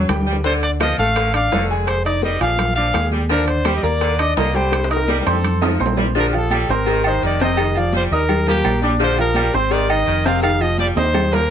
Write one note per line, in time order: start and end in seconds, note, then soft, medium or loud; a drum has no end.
0.00 0.10 F#3 medium
0.09 0.92 D2 medium
0.09 0.38 G3 medium
0.09 0.38 G4 medium
0.09 0.39 G5 medium
0.09 high bongo medium
0.09 low bongo medium
0.09 high timbale medium
0.09 maracas medium
0.22 low conga medium
0.27 0.36 G3 medium
0.27 high bongo soft
0.27 maracas soft
0.33 low conga medium
0.44 0.63 D3 medium
0.44 0.74 D3 medium
0.44 0.74 D4 medium
0.44 0.53 C5 loud
0.44 0.74 D5 medium
0.44 high bongo medium
0.44 high conga soft
0.44 maracas medium
0.63 0.71 D5 medium
0.63 high conga soft
0.63 high timbale medium
0.80 0.95 F3 medium
0.80 0.99 F3 medium
0.80 0.95 F4 medium
0.80 0.98 D#5 loud
0.80 0.95 F5 medium
0.80 high bongo medium
0.80 high conga loud
0.80 high timbale loud
0.80 claves medium
0.80 maracas medium
0.98 1.48 A1 medium
0.98 1.28 A3 medium
0.98 1.28 A4 medium
0.98 1.32 F5 loud
0.98 1.28 A5 medium
0.98 high bongo soft
0.98 maracas soft
1.16 1.34 D3 medium
1.16 high bongo medium
1.16 high conga soft
1.16 high timbale medium
1.16 maracas medium
1.34 1.48 D4 medium
1.34 1.48 D5 medium
1.34 1.68 F5 loud
1.34 1.49 D6 medium
1.34 high bongo soft
1.34 high conga soft
1.34 high timbale medium
1.34 claves medium
1.34 maracas medium
1.51 2.35 F1 medium
1.51 1.94 D3 medium
1.51 1.67 A3 medium
1.51 1.67 A4 medium
1.51 1.67 A5 medium
1.51 high bongo medium
1.51 low bongo medium
1.51 high conga soft
1.51 low timbale medium
1.51 maracas medium
1.69 1.99 G#3 medium
1.69 1.99 G#4 medium
1.69 2.00 G#5 medium
1.69 high bongo soft
1.69 high conga soft
1.69 maracas soft
1.87 2.04 C5 loud
1.87 high bongo medium
1.87 high conga soft
1.87 high timbale medium
1.87 claves medium
1.87 maracas medium
2.04 2.35 D#4 medium
2.04 2.22 D5 loud
2.04 2.35 D#5 medium
2.04 2.35 D#6 medium
2.04 high bongo soft
2.04 high conga soft
2.04 high timbale medium
2.22 2.53 G3 medium
2.22 2.40 D#5 medium
2.22 high bongo medium
2.22 high conga medium
2.22 maracas medium
2.39 2.90 A#1 loud
2.39 2.70 F3 medium
2.39 2.70 F4 medium
2.39 2.75 F5 loud
2.39 2.70 G#5 medium
2.39 high conga soft
2.39 high timbale medium
2.39 maracas soft
2.57 high bongo medium
2.57 high conga soft
2.57 low conga medium
2.57 high timbale medium
2.57 claves medium
2.57 maracas medium
2.75 2.94 F3 medium
2.75 2.91 D4 medium
2.75 2.91 D5 medium
2.75 3.09 F5 loud
2.75 2.92 D6 medium
2.75 high bongo soft
2.75 maracas medium
2.94 3.78 D#2 medium
2.94 3.24 G#3 medium
2.94 3.24 G#4 medium
2.94 3.24 G#5 medium
2.94 high bongo medium
2.94 low bongo medium
2.94 high conga medium
2.94 high timbale medium
2.94 claves medium
2.94 maracas medium
3.11 3.21 G3 medium
3.11 high bongo soft
3.11 high conga medium
3.11 maracas soft
3.29 3.59 D3 medium
3.29 3.48 F3 loud
3.29 3.60 D4 medium
3.29 3.46 A#4 loud
3.29 3.60 D5 medium
3.29 high bongo medium
3.29 high conga soft
3.29 maracas medium
3.47 3.74 C5 medium
3.47 high conga soft
3.47 high timbale medium
3.47 maracas medium
3.65 3.84 G3 medium
3.65 3.80 G3 medium
3.65 3.81 G4 medium
3.65 3.81 G5 medium
3.65 high bongo medium
3.65 high conga loud
3.65 high timbale medium
3.65 claves medium
3.65 maracas medium
3.76 3.84 D#5 medium
3.83 4.33 D#2 medium
3.83 4.13 A#3 medium
3.83 4.12 A#4 medium
3.83 4.21 D5 loud
3.83 4.13 A#5 medium
3.83 high bongo soft
3.83 high conga soft
3.83 maracas soft
4.01 4.20 D3 medium
4.01 high bongo medium
4.01 high conga soft
4.01 high timbale medium
4.01 maracas medium
4.19 4.34 D4 medium
4.19 4.34 D5 medium
4.19 4.36 D#5 loud
4.19 4.34 D6 medium
4.19 high bongo soft
4.19 high conga soft
4.19 high timbale medium
4.19 claves medium
4.37 5.20 C2 medium
4.37 4.79 D3 medium
4.37 4.52 A#3 medium
4.37 4.52 A#4 medium
4.37 4.57 D#5 medium
4.37 4.52 A#5 medium
4.37 high bongo medium
4.37 low bongo medium
4.37 high conga soft
4.37 low timbale medium
4.37 maracas medium
4.54 4.84 G3 medium
4.54 4.84 G4 medium
4.54 4.91 C5 medium
4.54 4.84 G5 medium
4.54 high bongo soft
4.54 high conga soft
4.54 maracas soft
4.72 high bongo medium
4.72 high conga soft
4.72 high timbale medium
4.72 claves medium
4.72 maracas medium
4.84 high bongo loud
4.90 5.20 D#4 medium
4.90 5.18 A#4 medium
4.90 5.20 D#5 medium
4.90 5.20 D#6 medium
4.90 high conga soft
4.90 high timbale medium
4.90 maracas medium
4.96 high bongo medium
5.08 5.38 G3 medium
5.08 high bongo medium
5.08 high conga loud
5.08 maracas medium
5.20 5.28 A#4 medium
5.20 low bongo medium
5.26 5.76 F2 loud
5.26 5.55 C4 medium
5.26 5.80 A4 medium
5.26 5.56 C5 medium
5.26 5.56 C6 medium
5.26 high conga soft
5.26 high timbale medium
5.26 maracas soft
5.33 low bongo medium
5.44 high conga soft
5.44 low conga medium
5.44 high timbale medium
5.44 claves medium
5.44 maracas medium
5.61 5.80 F3 medium
5.61 5.76 D#4 medium
5.61 5.76 D#5 medium
5.61 5.77 D#6 medium
5.61 high conga soft
5.61 high timbale medium
5.61 maracas medium
5.68 low bongo medium
5.79 6.63 A#1 medium
5.79 6.09 C4 medium
5.79 6.09 C5 medium
5.79 6.09 C6 medium
5.79 low bongo medium
5.79 high conga medium
5.79 claves medium
5.79 maracas medium
5.86 low timbale medium
5.92 low bongo medium
5.97 6.06 G3 medium
5.97 high conga medium
5.97 low timbale medium
5.97 maracas soft
6.04 low bongo medium
6.15 6.30 D3 medium
6.15 6.34 F3 loud
6.15 6.30 D4 medium
6.15 6.30 D5 medium
6.15 cowbell loud
6.15 high conga soft
6.15 low agogo medium
6.15 maracas medium
6.19 6.26 A#4 medium
6.33 6.63 F3 medium
6.33 6.63 F4 medium
6.33 6.63 F5 medium
6.33 high conga soft
6.33 low agogo medium
6.33 maracas medium
6.37 6.72 A4 medium
6.50 6.70 G3 medium
6.50 cowbell medium
6.50 high conga medium
6.50 low agogo loud
6.50 claves medium
6.50 maracas medium
6.68 7.18 G#1 loud
6.68 6.99 C4 medium
6.68 7.05 A#4 medium
6.68 6.99 C5 medium
6.68 6.99 C6 medium
6.68 cowbell medium
6.68 high conga soft
6.68 maracas soft
6.86 7.05 D#3 medium
6.86 cowbell loud
6.86 high conga soft
6.86 low agogo medium
6.86 maracas medium
7.04 7.35 D#3 medium
7.04 7.35 D#4 medium
7.04 7.22 C5 medium
7.04 7.35 D#5 medium
7.04 high conga soft
7.04 low agogo loud
7.04 claves medium
7.22 8.05 F1 medium
7.22 7.64 D#3 medium
7.22 7.41 D5 medium
7.22 cowbell medium
7.22 high conga soft
7.22 maracas medium
7.40 7.55 C3 loud
7.40 7.55 C4 loud
7.40 7.55 C5 loud
7.40 7.80 D#5 loud
7.40 cowbell medium
7.40 high conga soft
7.40 low agogo medium
7.40 maracas soft
7.57 7.73 D#3 medium
7.57 7.74 D#4 medium
7.57 7.73 D#5 medium
7.57 cowbell loud
7.57 high conga soft
7.57 low agogo loud
7.57 claves medium
7.57 maracas medium
7.75 8.06 F3 medium
7.75 8.06 F4 medium
7.75 7.95 D5 medium
7.75 8.06 F5 medium
7.75 high conga soft
7.75 low agogo medium
7.75 maracas medium
7.93 8.23 G3 medium
7.93 8.04 C5 loud
7.93 cowbell medium
7.93 high conga medium
7.93 maracas medium
8.11 8.61 D#2 medium
8.11 8.41 D#4 medium
8.11 8.45 A#4 loud
8.11 8.41 D#5 medium
8.11 8.41 D#6 medium
8.11 high conga soft
8.11 maracas soft
8.29 cowbell loud
8.29 high conga soft
8.29 low conga medium
8.29 low agogo medium
8.29 claves medium
8.29 maracas medium
8.47 8.66 F3 medium
8.47 8.77 A#3 medium
8.47 8.81 G4 loud
8.47 8.77 A#4 medium
8.47 8.77 A#5 medium
8.47 high conga soft
8.47 low conga medium
8.47 maracas medium
8.64 9.48 A#1 loud
8.64 cowbell medium
8.64 high conga medium
8.64 low timbale medium
8.64 low agogo loud
8.64 claves medium
8.64 maracas medium
8.81 8.92 G3 medium
8.81 8.97 D4 medium
8.81 8.98 D5 medium
8.81 8.98 D6 medium
8.81 cowbell medium
8.81 high conga medium
8.81 maracas soft
9.00 9.15 D3 medium
9.00 9.19 F3 loud
9.00 9.15 D4 medium
9.00 9.18 C5 loud
9.00 9.15 D5 medium
9.00 cowbell loud
9.00 low agogo medium
9.00 maracas medium
9.17 9.48 F3 medium
9.17 9.48 F4 medium
9.17 9.56 A#4 loud
9.17 9.48 F5 medium
9.17 high conga soft
9.17 low agogo medium
9.34 9.54 G3 medium
9.34 cowbell medium
9.34 high conga loud
9.34 low agogo loud
9.34 claves medium
9.34 maracas medium
9.54 10.03 G#1 loud
9.54 9.83 C4 medium
9.54 9.83 C5 medium
9.54 9.73 C5 loud
9.54 9.84 C6 medium
9.54 cowbell medium
9.54 maracas soft
9.71 9.90 D#3 medium
9.71 9.91 D5 loud
9.71 cowbell loud
9.71 high conga soft
9.71 low agogo medium
9.71 maracas medium
9.88 10.19 D#3 medium
9.88 10.19 D#4 medium
9.88 10.28 D#5 loud
9.88 10.19 D#5 medium
9.88 high conga soft
9.88 low agogo loud
9.88 claves medium
10.06 10.90 F1 loud
10.06 10.49 D#3 medium
10.06 cowbell medium
10.06 high conga soft
10.06 maracas medium
10.24 10.40 C3 loud
10.24 10.40 C4 loud
10.24 10.40 C5 medium
10.24 10.42 F5 loud
10.24 cowbell medium
10.24 high conga soft
10.24 low agogo medium
10.24 maracas soft
10.42 10.57 D#3 medium
10.42 10.58 D#4 medium
10.42 10.58 D#5 medium
10.42 10.63 F5 loud
10.42 cowbell loud
10.42 high conga soft
10.42 low agogo loud
10.42 claves medium
10.42 maracas medium
10.60 10.90 F3 medium
10.60 10.90 F4 medium
10.60 10.79 D#5 loud
10.60 10.91 F5 medium
10.60 high conga soft
10.60 low agogo medium
10.78 11.08 G3 medium
10.78 10.88 D5 loud
10.78 cowbell medium
10.78 high conga medium
10.78 maracas medium
10.96 11.46 D#2 loud
10.96 11.26 D#4 medium
10.96 11.36 C5 loud
10.96 11.26 D#5 medium
10.96 11.26 D#6 medium
10.96 high conga medium
10.96 high timbale medium
10.96 maracas soft
11.14 cowbell loud
11.14 low conga loud
11.14 high timbale medium
11.14 low agogo loud
11.14 claves medium
11.14 maracas medium
11.32 11.50 F3 medium
11.32 11.50 A#3 medium
11.32 11.50 A#4 medium
11.32 11.50 A#4 loud
11.32 11.50 A#5 medium
11.32 low conga medium
11.32 low timbale medium